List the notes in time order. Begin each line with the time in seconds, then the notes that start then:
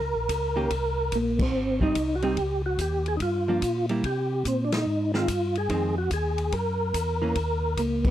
Already playing: A#4
0.01 C#2
0.15 A#1
0.29 C#2, kick, hi-hat pedal, ride
0.56 D#3 A#3 C#4 G4
0.70 C2, kick, ride
1.12 A#1 A#3, kick, hi-hat pedal, ride
1.39 C4, kick, crash
1.54 G#1
1.81 G3 C4 D#4, kick
1.95 C2, kick, hi-hat pedal, ride
2.15 F#4
2.22 G3 C4 D#4 G4, ride
2.37 C#2, kick, ride
2.66 F#4
2.78 D#2 G4, kick, hi-hat pedal, ride
3.06 G#4, ride
3.17 G2 D#4, kick, ride
3.22 F4
3.48 F3 A#3 D4
3.62 A#2, kick, hi-hat pedal, ride
3.89 G3 A#3 E4, ride
4.04 C3 G4, kick, ride
4.45 A#2 C4, kick, hi-hat pedal, ride
4.65 D4
4.72 D#4, snare, ride
4.87 G#2
5.14 D#3 G#3 C4 F4, snare
5.28 G2, kick, hi-hat pedal, ride
5.55 G#4, ride
5.69 F2 D#3 G#3 C4, kick, ride
5.98 F#4
6.11 D#2 G#4, kick, hi-hat pedal, ride
6.38 ride
6.52 F#2 A#4, kick, ride
6.94 E2, kick, hi-hat pedal, ride
7.22 E3 A#3 C#4
7.35 D#2, kick, ride
7.77 C#2 A#3, kick, hi-hat pedal, ride
8.05 B3, kick, crash